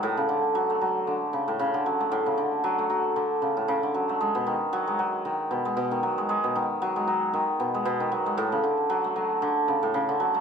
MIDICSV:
0, 0, Header, 1, 2, 480
1, 0, Start_track
1, 0, Tempo, 521739
1, 29, Time_signature, 4, 2, 24, 8
1, 9572, End_track
2, 0, Start_track
2, 0, Title_t, "Hammered dulcimer"
2, 0, Program_c, 0, 15
2, 27, Note_on_c, 0, 45, 93
2, 160, Note_on_c, 0, 49, 70
2, 194, Note_off_c, 0, 45, 0
2, 265, Note_on_c, 0, 50, 75
2, 314, Note_off_c, 0, 49, 0
2, 506, Note_on_c, 0, 54, 92
2, 642, Note_on_c, 0, 57, 68
2, 737, Note_off_c, 0, 54, 0
2, 748, Note_on_c, 0, 54, 70
2, 976, Note_off_c, 0, 50, 0
2, 987, Note_on_c, 0, 50, 69
2, 1034, Note_off_c, 0, 54, 0
2, 1225, Note_on_c, 0, 49, 70
2, 1274, Note_off_c, 0, 50, 0
2, 1360, Note_on_c, 0, 45, 74
2, 1394, Note_off_c, 0, 49, 0
2, 1466, Note_on_c, 0, 49, 90
2, 1514, Note_off_c, 0, 45, 0
2, 1602, Note_on_c, 0, 50, 71
2, 1634, Note_off_c, 0, 49, 0
2, 1711, Note_on_c, 0, 54, 68
2, 1841, Note_off_c, 0, 57, 0
2, 1844, Note_on_c, 0, 57, 63
2, 1947, Note_on_c, 0, 45, 90
2, 1994, Note_off_c, 0, 50, 0
2, 2082, Note_on_c, 0, 49, 69
2, 2114, Note_off_c, 0, 45, 0
2, 2114, Note_off_c, 0, 54, 0
2, 2186, Note_on_c, 0, 50, 73
2, 2234, Note_off_c, 0, 49, 0
2, 2426, Note_on_c, 0, 54, 95
2, 2559, Note_off_c, 0, 57, 0
2, 2563, Note_on_c, 0, 57, 65
2, 2655, Note_off_c, 0, 54, 0
2, 2666, Note_on_c, 0, 54, 68
2, 2896, Note_off_c, 0, 50, 0
2, 2907, Note_on_c, 0, 50, 70
2, 2954, Note_off_c, 0, 54, 0
2, 3146, Note_on_c, 0, 49, 64
2, 3194, Note_off_c, 0, 50, 0
2, 3283, Note_on_c, 0, 45, 70
2, 3314, Note_off_c, 0, 49, 0
2, 3389, Note_on_c, 0, 49, 93
2, 3434, Note_off_c, 0, 45, 0
2, 3525, Note_on_c, 0, 50, 66
2, 3554, Note_off_c, 0, 49, 0
2, 3629, Note_on_c, 0, 54, 71
2, 3762, Note_off_c, 0, 57, 0
2, 3765, Note_on_c, 0, 57, 68
2, 3869, Note_on_c, 0, 56, 83
2, 3914, Note_off_c, 0, 50, 0
2, 3914, Note_off_c, 0, 54, 0
2, 3925, Note_off_c, 0, 57, 0
2, 4001, Note_on_c, 0, 47, 73
2, 4108, Note_on_c, 0, 51, 73
2, 4154, Note_off_c, 0, 47, 0
2, 4154, Note_off_c, 0, 56, 0
2, 4349, Note_on_c, 0, 54, 91
2, 4485, Note_on_c, 0, 56, 65
2, 4579, Note_off_c, 0, 54, 0
2, 4590, Note_on_c, 0, 54, 70
2, 4820, Note_off_c, 0, 51, 0
2, 4831, Note_on_c, 0, 51, 74
2, 4874, Note_off_c, 0, 54, 0
2, 4874, Note_off_c, 0, 56, 0
2, 5067, Note_on_c, 0, 47, 71
2, 5114, Note_off_c, 0, 51, 0
2, 5201, Note_on_c, 0, 56, 72
2, 5295, Note_off_c, 0, 47, 0
2, 5306, Note_on_c, 0, 47, 89
2, 5440, Note_on_c, 0, 51, 67
2, 5474, Note_off_c, 0, 47, 0
2, 5474, Note_off_c, 0, 56, 0
2, 5547, Note_on_c, 0, 54, 74
2, 5685, Note_on_c, 0, 56, 71
2, 5776, Note_off_c, 0, 56, 0
2, 5787, Note_on_c, 0, 56, 87
2, 5924, Note_on_c, 0, 47, 67
2, 5954, Note_off_c, 0, 51, 0
2, 6030, Note_on_c, 0, 51, 75
2, 6074, Note_off_c, 0, 47, 0
2, 6074, Note_off_c, 0, 54, 0
2, 6074, Note_off_c, 0, 56, 0
2, 6272, Note_on_c, 0, 54, 95
2, 6404, Note_on_c, 0, 56, 71
2, 6498, Note_off_c, 0, 54, 0
2, 6509, Note_on_c, 0, 54, 73
2, 6737, Note_off_c, 0, 51, 0
2, 6748, Note_on_c, 0, 51, 77
2, 6794, Note_off_c, 0, 54, 0
2, 6794, Note_off_c, 0, 56, 0
2, 6990, Note_on_c, 0, 47, 70
2, 7034, Note_off_c, 0, 51, 0
2, 7125, Note_on_c, 0, 56, 75
2, 7215, Note_off_c, 0, 47, 0
2, 7226, Note_on_c, 0, 47, 94
2, 7362, Note_on_c, 0, 51, 70
2, 7394, Note_off_c, 0, 47, 0
2, 7394, Note_off_c, 0, 56, 0
2, 7467, Note_on_c, 0, 54, 79
2, 7601, Note_on_c, 0, 56, 68
2, 7706, Note_on_c, 0, 45, 100
2, 7754, Note_off_c, 0, 51, 0
2, 7754, Note_off_c, 0, 54, 0
2, 7754, Note_off_c, 0, 56, 0
2, 7841, Note_on_c, 0, 49, 73
2, 7874, Note_off_c, 0, 45, 0
2, 7944, Note_on_c, 0, 50, 72
2, 7994, Note_off_c, 0, 49, 0
2, 8185, Note_on_c, 0, 54, 98
2, 8320, Note_on_c, 0, 57, 69
2, 8415, Note_off_c, 0, 54, 0
2, 8426, Note_on_c, 0, 54, 77
2, 8656, Note_off_c, 0, 50, 0
2, 8667, Note_on_c, 0, 50, 85
2, 8714, Note_off_c, 0, 54, 0
2, 8907, Note_on_c, 0, 49, 71
2, 8954, Note_off_c, 0, 50, 0
2, 9042, Note_on_c, 0, 45, 81
2, 9074, Note_off_c, 0, 49, 0
2, 9147, Note_on_c, 0, 49, 92
2, 9194, Note_off_c, 0, 45, 0
2, 9281, Note_on_c, 0, 50, 75
2, 9314, Note_off_c, 0, 49, 0
2, 9382, Note_on_c, 0, 54, 81
2, 9513, Note_off_c, 0, 57, 0
2, 9517, Note_on_c, 0, 57, 70
2, 9572, Note_off_c, 0, 50, 0
2, 9572, Note_off_c, 0, 54, 0
2, 9572, Note_off_c, 0, 57, 0
2, 9572, End_track
0, 0, End_of_file